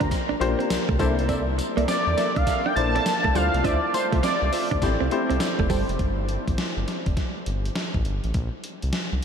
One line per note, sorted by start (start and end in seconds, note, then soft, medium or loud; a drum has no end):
0.00 0.09 D2 loud
0.00 0.40 A#3 medium
0.00 0.41 D4 medium
0.00 0.07 D4 medium
0.00 0.41 F4 medium
0.00 0.41 G4 medium
0.00 0.41 C5 medium
0.00 0.12 A#5 loud
0.00 kick loud
0.00 closed hi-hat soft
0.11 kick medium
0.11 snare medium
0.11 closed hi-hat medium
0.11 tambourine medium
0.29 0.35 A#1 medium
0.29 0.36 D4 medium
0.40 0.56 A#1 loud
0.40 0.98 A#3 loud
0.40 0.98 D4 medium
0.40 0.99 F4 medium
0.40 1.00 G4 medium
0.40 0.99 C5 loud
0.40 muted clean electric guitar stroke soft
0.40 closed hi-hat medium
0.59 0.65 C4 medium
0.59 closed hi-hat soft
0.70 0.78 C2 soft
0.70 muted clean electric guitar stroke soft
0.70 snare loud
0.70 closed hi-hat medium
0.70 tambourine loud
0.89 0.97 C2 medium
0.89 0.95 A3 medium
0.89 kick loud
0.99 1.61 C2 loud
0.99 1.11 G3 medium
0.99 1.97 A#3 loud
0.99 1.97 D4 medium
0.99 1.97 E4 medium
0.99 1.15 A4 medium
0.99 1.97 A4 medium
0.99 1.15 A#4 medium
0.99 1.97 C5 loud
0.99 1.15 D5 medium
0.99 1.15 E5 medium
0.99 kick loud
0.99 closed hi-hat medium
0.99 tambourine medium
1.19 closed hi-hat medium
1.28 1.40 C4 medium
1.28 1.44 A4 loud
1.28 1.44 A#4 medium
1.28 1.44 D5 medium
1.28 1.45 E5 loud
1.28 kick loud
1.28 closed hi-hat medium
1.28 tambourine medium
1.58 muted clean electric guitar stroke soft
1.58 closed hi-hat medium
1.58 tambourine medium
1.77 1.86 C2 loud
1.77 1.83 A#3 loud
1.77 1.86 A4 medium
1.77 1.86 A#4 medium
1.77 1.86 D5 medium
1.77 1.86 E5 medium
1.77 closed hi-hat medium
1.88 1.99 C4 medium
1.88 2.38 D5 medium
1.88 snare loud
1.88 closed hi-hat medium
1.88 tambourine loud
2.07 2.15 E2 medium
2.17 2.33 A4 medium
2.17 2.33 A#4 medium
2.17 2.33 D5 medium
2.17 2.33 E5 medium
2.17 muted clean electric guitar stroke soft
2.17 snare medium
2.17 closed hi-hat medium
2.17 tambourine medium
2.36 2.45 C2 loud
2.36 2.43 D4 medium
2.36 2.67 F5 loud
2.36 kick loud
2.36 closed hi-hat medium
2.46 2.62 A4 medium
2.46 2.62 A#4 medium
2.46 2.62 D5 medium
2.46 2.62 E5 medium
2.46 kick medium
2.46 snare medium
2.46 closed hi-hat medium
2.46 tambourine medium
2.66 2.72 D4 medium
2.66 2.75 G5 loud
2.76 2.99 A#1 loud
2.76 3.35 A#3 medium
2.76 3.33 D4 medium
2.76 3.34 E4 medium
2.76 3.35 A4 medium
2.76 3.34 C5 medium
2.76 3.37 A5 loud
2.76 muted clean electric guitar stroke soft
2.76 closed hi-hat medium
2.95 3.02 C4 medium
2.95 3.03 A4 medium
2.95 3.03 A#4 medium
2.95 3.04 D5 medium
2.95 3.04 E5 medium
2.95 closed hi-hat medium
3.06 muted clean electric guitar stroke soft
3.06 snare loud
3.06 closed hi-hat medium
3.06 tambourine loud
3.24 3.33 C2 medium
3.24 3.31 A3 medium
3.24 kick medium
3.35 3.50 D2 loud
3.35 3.46 G3 medium
3.35 4.32 A3 medium
3.35 4.32 D4 medium
3.35 4.32 E4 medium
3.35 4.33 F4 medium
3.35 4.33 C5 medium
3.35 3.66 F5 loud
3.35 closed hi-hat medium
3.35 tambourine medium
3.54 3.62 C2 loud
3.54 closed hi-hat soft
3.64 3.79 D2 loud
3.64 3.75 D4 medium
3.64 3.80 F4 loud
3.64 3.80 C5 medium
3.64 3.94 D5 loud
3.64 3.80 E5 loud
3.64 kick loud
3.64 closed hi-hat medium
3.64 tambourine medium
3.94 4.07 C5 medium
3.94 muted clean electric guitar stroke soft
3.94 closed hi-hat medium
3.94 tambourine medium
4.12 4.21 C2 medium
4.12 4.19 A3 medium
4.12 4.21 F4 medium
4.12 4.21 C5 medium
4.12 4.21 E5 medium
4.12 kick loud
4.12 closed hi-hat medium
4.23 4.34 C4 medium
4.23 4.78 D5 medium
4.23 snare loud
4.23 closed hi-hat medium
4.23 tambourine loud
4.42 4.50 C2 medium
4.52 4.68 F4 medium
4.52 4.68 C5 medium
4.52 4.68 E5 medium
4.52 muted clean electric guitar stroke soft
4.52 open hi-hat medium
4.52 tambourine medium
4.71 4.80 D2 loud
4.71 4.78 D4 medium
4.71 kick loud
4.82 4.97 A1 loud
4.82 5.07 A3 medium
4.82 5.07 C4 medium
4.82 5.08 E4 medium
4.82 5.08 G4 medium
4.82 5.08 C5 medium
4.82 kick loud
4.82 snare medium
4.82 closed hi-hat medium
4.82 tambourine medium
5.00 5.09 C2 medium
5.00 5.07 C4 medium
5.11 5.86 A3 medium
5.11 5.86 C4 medium
5.11 5.87 E4 medium
5.11 5.87 G4 medium
5.11 5.87 C5 loud
5.11 muted clean electric guitar stroke soft
5.11 closed hi-hat medium
5.30 5.39 C2 medium
5.30 5.36 C4 medium
5.30 closed hi-hat soft
5.40 muted clean electric guitar stroke soft
5.40 snare loud
5.40 closed hi-hat medium
5.40 tambourine loud
5.59 5.68 F1 medium
5.59 5.66 A3 medium
5.59 kick loud
5.70 5.85 G1 medium
5.70 5.81 G3 medium
5.70 5.86 A4 medium
5.70 5.86 C5 medium
5.70 5.86 G5 medium
5.70 kick medium
5.70 open hi-hat medium
5.70 tambourine medium
5.89 5.97 F1 medium
5.89 closed hi-hat medium
5.99 6.38 G1 medium
5.99 kick loud
5.99 closed hi-hat medium
6.29 closed hi-hat medium
6.48 6.56 A#1 medium
6.48 kick medium
6.48 closed hi-hat medium
6.58 snare loud
6.58 closed hi-hat medium
6.77 6.85 G1 medium
6.88 snare medium
6.88 closed hi-hat medium
7.06 7.15 F1 medium
7.06 kick medium
7.06 closed hi-hat soft
7.17 kick medium
7.17 snare medium
7.17 closed hi-hat medium
7.46 7.70 G1 medium
7.46 closed hi-hat medium
7.65 closed hi-hat soft
7.76 snare loud
7.76 closed hi-hat medium
7.94 8.03 A1 medium
7.94 kick medium
8.05 8.20 G1 medium
8.05 closed hi-hat medium
8.24 8.33 A1 medium
8.24 closed hi-hat soft
8.34 8.49 A#1 loud
8.34 kick loud
8.34 closed hi-hat medium
8.64 closed hi-hat medium
8.82 8.92 C2 medium
8.82 closed hi-hat medium
8.93 snare loud
8.93 closed hi-hat medium
9.13 9.21 C2 medium